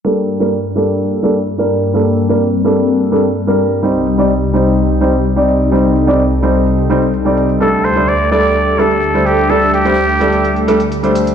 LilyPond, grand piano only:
\new Staff \with { instrumentName = "Grand piano" } { \time 4/4 \key g \minor \tempo 4 = 127 <g bes d' a'>8. <g bes d' bes'>16 r8 <g bes d' a'>4 <g bes d' a'>16 r8 <g bes d' bes'>8. | <g bes d' a'>8. <g bes d' bes'>16 r8 <g bes d' a'>4 <g bes d' a'>16 r8 <g bes d' bes'>8. | <g c' ees' c''>8. <g c' ees' d''>16 r8 <g c' ees' c''>4 <g c' ees' c''>16 r8 <g c' ees' d''>8. | <g c' ees' c''>8. <g c' ees' d''>16 r8 <g c' ees' c''>4 <g c' ees' c''>16 r8 <g c' ees' d''>8. |
<g a d' a'>8. <g a d' c''>16 r8 <g a d' a'>4 <g a d' a'>16 r8 <g a d' c''>8. | <g a d' a'>8. <g a d' c''>16 r8 <g a d' a'>4 <g a d' a'>16 r8 <g a d' c''>8. | }